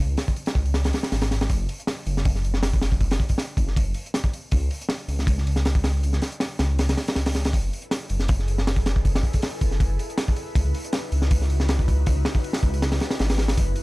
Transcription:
0.00 detuned saw bass C#2
0.17 snare, open hi-hat
0.28 kick
0.36 open hi-hat
0.46 snare, open hi-hat
0.55 detuned saw bass C#2, kick
0.65 open hi-hat
0.74 snare, open hi-hat
0.84 snare, open hi-hat
0.93 snare, open hi-hat
1.03 snare, open hi-hat
1.12 detuned saw bass G#1, snare, open hi-hat
1.22 snare, open hi-hat
1.31 snare, open hi-hat
1.41 snare, open hi-hat
1.49 detuned saw bass F#1, kick, open hi-hat
1.69 open hi-hat
1.80 closed hi-hat
1.87 snare, open hi-hat
2.06 detuned saw bass F#1, open hi-hat
2.17 snare
2.25 kick, open hi-hat
2.36 snare
2.44 detuned saw bass F#1, open hi-hat
2.54 snare
2.63 snare, open hi-hat
2.73 kick
2.81 snare, open hi-hat
2.92 kick
3.00 detuned saw bass F#1, kick, open hi-hat
3.11 snare, open hi-hat
3.20 kick
3.29 kick, open hi-hat
3.38 snare, open hi-hat
3.57 detuned saw bass F#1, kick, open hi-hat
3.68 snare
3.76 kick, open hi-hat
3.94 open hi-hat
4.06 closed hi-hat
4.14 snare, open hi-hat
4.24 kick
4.33 open hi-hat
4.51 detuned saw bass C#2, kick, open hi-hat
4.71 open hi-hat
4.81 closed hi-hat
4.89 snare, open hi-hat
5.08 detuned saw bass C#2, open hi-hat
5.19 snare
5.27 kick, open hi-hat
5.38 snare
5.46 detuned saw bass C#2, open hi-hat
5.56 snare
5.65 snare, open hi-hat
5.75 kick
5.84 snare, open hi-hat
6.03 detuned saw bass C#2, open hi-hat
6.13 snare
6.22 snare, open hi-hat
6.32 closed hi-hat
6.40 snare, open hi-hat
6.59 detuned saw bass C#2, snare, open hi-hat
6.79 snare, open hi-hat
6.89 snare, open hi-hat
6.97 snare, open hi-hat
7.08 snare, open hi-hat
7.15 detuned saw bass C#2, snare, open hi-hat
7.26 snare, open hi-hat
7.34 snare, open hi-hat
7.45 snare, open hi-hat
7.53 detuned saw bass F#1, ambient pad E4 G#4 A4 B4, kick, open hi-hat
7.73 open hi-hat
7.82 closed hi-hat
7.91 snare, open hi-hat
8.09 detuned saw bass F#1, open hi-hat
8.20 snare
8.28 kick, open hi-hat
8.39 snare
8.48 detuned saw bass F#1, open hi-hat
8.58 snare
8.67 snare, open hi-hat
8.76 kick
8.86 snare, open hi-hat
8.96 kick
9.05 detuned saw bass F#1, kick, open hi-hat
9.15 snare, open hi-hat
9.23 kick
9.33 kick, open hi-hat
9.42 snare, open hi-hat
9.61 detuned saw bass F#1, kick, open hi-hat
9.71 snare
9.80 kick, open hi-hat
9.99 open hi-hat
10.10 closed hi-hat
10.18 snare, open hi-hat
10.28 kick
10.36 open hi-hat
10.55 detuned saw bass C#2, ambient pad D#4 F#4, kick, open hi-hat
10.75 open hi-hat
10.84 closed hi-hat
10.93 snare, open hi-hat
11.12 detuned saw bass C#2, open hi-hat
11.22 snare
11.31 kick, open hi-hat
11.41 snare
11.50 detuned saw bass C#2, open hi-hat
11.60 snare
11.69 snare, open hi-hat
11.79 kick
11.88 kick, open hi-hat
12.06 detuned saw bass C#2, kick, open hi-hat
12.25 snare, open hi-hat
12.35 kick
12.44 open hi-hat
12.53 snare, open hi-hat
12.63 detuned saw bass C#2, kick
12.74 open hi-hat
12.82 snare, open hi-hat
12.92 snare, open hi-hat
13.00 snare, open hi-hat
13.11 snare, open hi-hat
13.19 detuned saw bass G#1, snare, open hi-hat
13.30 snare, open hi-hat
13.38 snare, open hi-hat
13.48 snare, open hi-hat
13.57 detuned saw bass F#1, ambient pad G#4 A4, kick, open hi-hat
13.76 open hi-hat

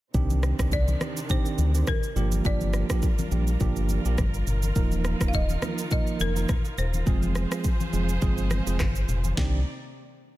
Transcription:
0.14 sub bass C2, string section C3 D#3 C4 D4, tine electric piano D#3 C4 D4 G4, kick, low conga, shaker
0.30 high conga, shaker
0.43 cross-stick, high conga, shaker
0.59 sub bass C2, tine electric piano D#3 C4 D4 G4, kick, cross-stick, shaker
0.72 marimba D5, kick, shaker
0.88 high conga, shaker
1.01 tine electric piano D#3 C4 D4 G4, cross-stick, high conga, shaker
1.17 shaker
1.30 tine electric piano D#3 C4 D4 G4, marimba C5, kick, low conga, shaker
1.46 shaker
1.58 sub bass D2, high conga, shaker
1.74 tine electric piano D#3 C4 D4 G4, shaker
1.87 marimba A#4, kick, cross-stick, high conga, low conga, shaker
2.03 shaker
2.16 sub bass G1, tine electric piano F3 A#3 D4 G4, string section G3 D4 F4 A#4, low conga, shaker
2.32 high conga, shaker
2.45 sub bass G1, tine electric piano F3 A#3 D4 G4, marimba D5, kick, low conga, shaker
2.61 high conga, shaker
2.73 cross-stick, high conga, shaker
2.90 tine electric piano F3 A#3 D4 G4, kick, cross-stick, shaker
3.02 kick, shaker
3.19 high conga, shaker
3.31 sub bass A#1, tine electric piano F3 A#3 D4 G4, high conga, shaker
3.48 shaker
3.60 sub bass G1, tine electric piano F3 A#3 D4 G4, kick, low conga, shaker
3.76 shaker
3.89 high conga, shaker
4.05 sub bass A#1, tine electric piano F3 A#3 D4 G4, shaker
4.18 sub bass G1, kick, cross-stick, high conga, low conga, shaker
4.34 shaker
4.47 sub bass G1, low conga, shaker
4.63 high conga, shaker
4.76 sub bass D#1, string section D#3 D#4, tine electric piano F3 A#3 D#4 A#4, kick, low conga, shaker
4.92 high conga, shaker
5.04 cross-stick, high conga, shaker
5.20 sub bass D#1, tine electric piano F3 A#3 D#4 A#4, kick, cross-stick, shaker
5.28 marimba F5
5.33 marimba D#5, kick, shaker
5.49 high conga, shaker
5.62 tine electric piano F3 A#3 D#4 A#4, cross-stick, high conga, shaker
5.78 shaker
5.91 tine electric piano F3 A#3 D#4 A#4, marimba D#5, kick, low conga, shaker
6.07 shaker
6.20 sub bass F1, marimba A#4, high conga, shaker
6.36 tine electric piano F3 A#3 D#4 A#4, shaker
6.49 kick, cross-stick, high conga, low conga, shaker
6.65 shaker
6.78 sub bass D#1, marimba C5, low conga, shaker
6.94 high conga, shaker
7.06 sub bass F1, tine electric piano F3 G#3 C4 G#4, string section F3 G#4 C5, kick, low conga, shaker
7.22 high conga, shaker
7.35 cross-stick, high conga, shaker
7.51 tine electric piano F3 G#3 C4 G#4, cross-stick, shaker
7.64 kick, shaker
7.80 high conga, shaker
7.93 sub bass F1, tine electric piano F3 G#3 C4 G#4, high conga, shaker
8.09 shaker
8.22 sub bass G1, tine electric piano F3 G#3 C4 G#4, kick, low conga, shaker
8.38 shaker
8.51 cross-stick, high conga, shaker
8.67 sub bass F1, tine electric piano F3 G#3 C4 G#4, shaker
8.79 sub bass G1, kick, cross-stick, clap, high conga, low conga, shaker
8.95 shaker
9.08 sub bass F1, low conga, shaker
9.24 high conga, shaker
9.37 sub bass C2, string section C3 C4 D#4 D5, tine electric piano D#3 C4 D4 G4, kick, snare, high conga

